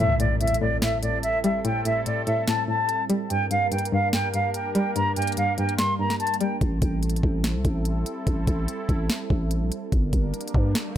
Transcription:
0.00 synth pluck A2, analog synth pad G3 C4 E4 A4, flute E5, impact
0.20 synth pluck A2, flute D5, closed hi-hat
0.41 synth pluck A2, flute E5, closed hi-hat
0.47 closed hi-hat
0.54 closed hi-hat
0.61 synth pluck A2, flute D5
0.82 synth pluck A2, flute E5, snare, closed hi-hat
1.03 synth pluck A2, flute D5, closed hi-hat
1.23 flute E5, closed hi-hat
1.44 synth pluck G3, flute E5, closed hi-hat
1.65 synth pluck A2, flute G5, closed hi-hat
1.85 synth pluck A2, flute E5, closed hi-hat
2.06 synth pluck A2, flute D5, closed hi-hat
2.27 synth pluck A2, flute E5, closed hi-hat
2.48 synth pluck A2, flute A5, snare, closed hi-hat
2.68 synth pluck A2, flute A5
2.89 closed hi-hat
3.10 synth pluck G3, closed hi-hat
3.30 synth pluck G2, analog synth pad A#3 D4 A#4, flute G5, closed hi-hat
3.51 synth pluck G2, flute F5, closed hi-hat
3.71 synth pluck G2, flute G5, closed hi-hat
3.79 closed hi-hat
3.85 closed hi-hat
3.92 synth pluck G2, flute F5
4.13 synth pluck G2, flute G5, snare, closed hi-hat
4.34 synth pluck G2, flute F5, closed hi-hat
4.54 flute G5, closed hi-hat
4.75 synth pluck G3, flute G5, closed hi-hat
4.96 synth pluck G2, flute A#5, closed hi-hat
5.16 synth pluck G2, flute G5, closed hi-hat
5.22 closed hi-hat
5.27 closed hi-hat
5.32 closed hi-hat
5.37 synth pluck G2, flute F5, closed hi-hat
5.58 synth pluck G2, flute G5, closed hi-hat
5.69 closed hi-hat
5.78 synth pluck G2, flute C6, snare, closed hi-hat
5.99 synth pluck G2, flute A#5
6.10 snare
6.20 flute A5, closed hi-hat
6.27 closed hi-hat
6.34 closed hi-hat
6.40 synth pluck G3, flute G5, closed hi-hat
6.61 808-style bass A1, analog synth pad C4 E4 A4, kick, closed hi-hat
6.82 808-style bass A1, kick, closed hi-hat
7.03 closed hi-hat
7.10 closed hi-hat
7.16 closed hi-hat
7.23 808-style bass A1, kick
7.44 snare, closed hi-hat
7.55 808-style bass C2
7.65 808-style bass A1, kick, closed hi-hat
7.85 closed hi-hat
8.06 closed hi-hat
8.27 808-style bass A1, kick, closed hi-hat
8.47 808-style bass A1, kick, closed hi-hat
8.68 closed hi-hat
8.89 808-style bass A1, kick, closed hi-hat
9.10 snare, closed hi-hat
9.30 808-style bass A1, kick
9.51 closed hi-hat
9.62 808-style bass A#1
9.72 closed hi-hat
9.92 808-style bass G1, analog synth pad G3 A#3 D4 A#4, kick, closed hi-hat, riser
10.13 808-style bass G1, kick, closed hi-hat
10.34 closed hi-hat
10.41 closed hi-hat
10.48 closed hi-hat
10.54 808-style bass G2, kick
10.75 snare, closed hi-hat

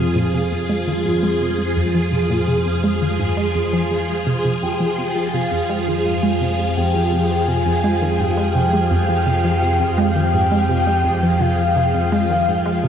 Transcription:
Already playing: synth drone F2, string machine F3 F4 G#4, synth texture G#4
0.16 synth arpeggio sound A#2
0.34 synth arpeggio sound C3
0.52 synth arpeggio sound F2
0.69 synth arpeggio sound G#3
0.87 synth arpeggio sound D#3
1.05 synth arpeggio sound G#2
1.23 synth arpeggio sound G#3
1.41 synth arpeggio sound C3
1.58 synth arpeggio sound G#3
1.77 synth arpeggio sound F2
1.94 synth arpeggio sound F3
2.12 synth arpeggio sound C3
2.30 synth arpeggio sound A#2
2.48 synth arpeggio sound C3
2.66 synth arpeggio sound F2
2.84 synth arpeggio sound G#3
3.02 synth arpeggio sound D#3
3.19 synth arpeggio sound G#2
3.37 synth arpeggio sound G#3
3.55 synth arpeggio sound F2
3.73 synth arpeggio sound F3
3.91 synth arpeggio sound F2
4.09 synth arpeggio sound G#3
4.27 synth arpeggio sound C3
4.45 synth arpeggio sound C3
4.62 synth drone F2, synth arpeggio sound F2, soft synth lead G5
4.80 synth arpeggio sound F3
4.98 synth arpeggio sound C3
5.16 synth arpeggio sound F3
5.33 synth arpeggio sound C3, soft synth lead F5
5.51 synth arpeggio sound F2
5.69 synth arpeggio sound G#3
5.87 synth arpeggio sound D#3
6.05 synth arpeggio sound G#2, soft synth lead F5
6.23 synth arpeggio sound G#3
6.41 synth arpeggio sound C3
6.59 synth arpeggio sound G#3
6.77 synth arpeggio sound F2, soft synth lead G5
6.95 synth arpeggio sound F3
7.12 synth arpeggio sound C3
7.30 synth arpeggio sound F3
7.48 synth arpeggio sound C3, soft synth lead G#5
7.66 synth arpeggio sound F2
7.84 synth arpeggio sound G#3
8.02 synth arpeggio sound D#3
8.19 synth arpeggio sound G#2, soft synth lead G5
8.37 synth arpeggio sound G#3
8.55 synth arpeggio sound C3, soft synth lead G5
8.73 synth arpeggio sound G#3
8.91 synth arpeggio sound F2
9.09 synth arpeggio sound F3
9.26 synth arpeggio sound C3
9.44 synth arpeggio sound F3
9.62 synth arpeggio sound C3
9.80 synth arpeggio sound F2
9.98 synth arpeggio sound G#3, soft synth lead G5
10.16 synth arpeggio sound D#3
10.34 synth arpeggio sound G#2
10.52 synth arpeggio sound G#3
10.69 synth arpeggio sound C3
10.87 synth arpeggio sound G#3
11.05 synth arpeggio sound F2
11.23 synth arpeggio sound F3
11.41 synth arpeggio sound C3, soft synth lead F5
11.59 synth arpeggio sound F3
11.76 synth arpeggio sound C3
11.94 synth arpeggio sound F2
12.12 synth arpeggio sound G#3
12.30 synth arpeggio sound D#3
12.48 synth arpeggio sound G#2
12.66 synth arpeggio sound G#3
12.84 synth arpeggio sound C3

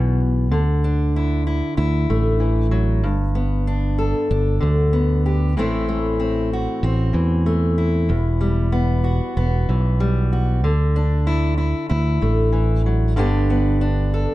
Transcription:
Already playing: fingered electric bass B1, steel-string acoustic guitar E2 B2 E3 G3 B3 F#4
0.51 fingered electric bass D2, steel-string acoustic guitar D3
0.84 steel-string acoustic guitar D4
1.16 steel-string acoustic guitar E4
1.47 steel-string acoustic guitar E4
1.77 fingered electric bass D2, steel-string acoustic guitar E4
2.10 fingered electric bass A1, steel-string acoustic guitar A3
2.40 steel-string acoustic guitar E3
2.71 steel-string acoustic guitar F#3
3.04 fingered electric bass G1, steel-string acoustic guitar G2
3.35 steel-string acoustic guitar B3
3.67 steel-string acoustic guitar D4
3.98 steel-string acoustic guitar A4
4.31 fingered electric bass G1, steel-string acoustic guitar D4
4.61 fingered electric bass D2, steel-string acoustic guitar D3
4.93 steel-string acoustic guitar B3
5.26 steel-string acoustic guitar G4
5.57 fingered electric bass A1, steel-string acoustic guitar A2 E3 A3 C4 E4
5.89 steel-string acoustic guitar A3
6.20 steel-string acoustic guitar C4
6.53 steel-string acoustic guitar F#4
6.83 fingered electric bass A1, steel-string acoustic guitar C4
7.13 fingered electric bass E2, steel-string acoustic guitar E3
7.46 steel-string acoustic guitar A3
7.78 steel-string acoustic guitar E4
8.09 fingered electric bass E1, steel-string acoustic guitar E2
8.41 steel-string acoustic guitar G3
8.72 steel-string acoustic guitar B3
9.04 steel-string acoustic guitar F#4
9.37 fingered electric bass E1, steel-string acoustic guitar B3
9.69 fingered electric bass B1, steel-string acoustic guitar E3
10.00 steel-string acoustic guitar G3
10.33 steel-string acoustic guitar F#4
10.64 fingered electric bass D2, steel-string acoustic guitar D3
10.96 steel-string acoustic guitar D4
11.27 steel-string acoustic guitar E4
11.58 steel-string acoustic guitar E4
11.89 fingered electric bass D2, steel-string acoustic guitar E4
12.22 fingered electric bass A1, steel-string acoustic guitar A3
12.52 steel-string acoustic guitar E3
12.86 steel-string acoustic guitar F#3
13.16 fingered electric bass G1, steel-string acoustic guitar G2 D3 B3 D4 G4
13.50 steel-string acoustic guitar B3
13.81 steel-string acoustic guitar D4
14.14 steel-string acoustic guitar A4

